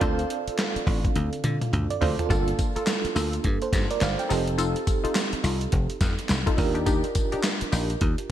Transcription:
Already playing: fm electric piano D5 F5
0.00 slap bass D2, fm electric piano C4 D4 F4 A4, analog polysynth D4 F4 C5, kick, closed hi-hat
0.19 closed hi-hat
0.30 closed hi-hat
0.47 muted slap bass stroke, closed hi-hat
0.59 snare, clap, closed hi-hat
0.76 muted slap bass stroke, closed hi-hat
0.87 slap bass A1, kick, open hi-hat
1.05 kick, closed hi-hat
1.16 slap bass D2, closed hi-hat, high tom
1.33 closed hi-hat
1.44 slap bass D3, closed hi-hat, mid tom
1.61 closed hi-hat, mid tom
1.73 slap bass D2, closed hi-hat, mid tom
1.90 fm electric piano D5, closed hi-hat
2.01 slap bass D2, analog polysynth D4 F4 C5, fm electric piano A4 C5, floor tom, open hi-hat
2.19 fm electric piano F4 A4, closed hi-hat, floor tom
2.29 slap bass G1, fm electric piano A#3 D4 F4 A4, analog polysynth A#3 F4 A4, kick, closed hi-hat, tambourine
2.48 closed hi-hat
2.59 kick, closed hi-hat, tambourine
2.76 analog polysynth A#3 F4 A4, muted slap bass stroke, closed hi-hat
2.87 snare, clap, closed hi-hat, tambourine
3.05 muted slap bass stroke, closed hi-hat
3.15 slap bass D2, analog polysynth A#3 F4 A4, open hi-hat, tambourine
3.33 closed hi-hat
3.44 slap bass G2, kick, closed hi-hat
3.62 fm electric piano A4 C5, closed hi-hat
3.73 slap bass G2, kick, snare, closed hi-hat, tambourine
3.91 fm electric piano A#4 D5, closed hi-hat
4.01 slap bass G1, fm electric piano D5 F5, snare, clap, closed hi-hat, tambourine
4.19 fm electric piano G5, closed hi-hat
4.29 slap bass F1, fm electric piano C4 D#4 G4 A4, analog polysynth D#4 F4 A4, open hi-hat, tambourine
4.47 closed hi-hat
4.58 analog polysynth D#4 F4 A4, closed hi-hat, tambourine
4.76 closed hi-hat
4.87 kick, closed hi-hat, tambourine
5.04 analog polysynth D#4 F4 A4, muted slap bass stroke, closed hi-hat
5.15 snare, clap, closed hi-hat, tambourine
5.33 muted slap bass stroke, closed hi-hat
5.44 slap bass C2, analog polysynth D#4 F4 A4, open hi-hat, tambourine
5.61 closed hi-hat
5.72 slap bass F1, kick, closed hi-hat
5.90 closed hi-hat
6.01 slap bass F2, kick, snare, closed hi-hat, tambourine
6.19 closed hi-hat
6.29 slap bass C2, snare, clap, closed hi-hat, tambourine
6.46 analog polysynth D#4 F4 A4, kick, closed hi-hat
6.57 slap bass D#2, fm electric piano D4 F4 G4 A#4, kick, open hi-hat, tambourine
6.74 analog polysynth D4 D#4 G4, closed hi-hat
6.86 analog polysynth D4 D#4 G4, kick, closed hi-hat, tambourine
7.04 closed hi-hat
7.15 kick, closed hi-hat, tambourine
7.32 analog polysynth D4 D#4 G4, muted slap bass stroke, closed hi-hat
7.44 snare, clap, closed hi-hat, tambourine
7.61 muted slap bass stroke, closed hi-hat
7.72 slap bass A#1, analog polysynth D4 D#4 G4, open hi-hat, tambourine
7.90 closed hi-hat
8.01 slap bass D#2, kick, closed hi-hat
8.18 closed hi-hat

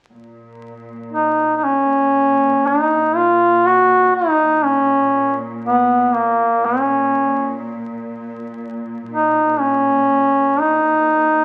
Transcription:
0.11 cello section A#2
1.13 duduk D#4
1.57 duduk D#4
1.64 duduk C#4
2.67 duduk D#4
3.16 duduk F4
3.66 duduk F#4
4.16 duduk D#4
4.65 duduk C#4
5.65 duduk B3
6.16 duduk A#3
6.65 duduk C#4
9.11 duduk D#4
9.60 duduk C#4
10.60 duduk D#4

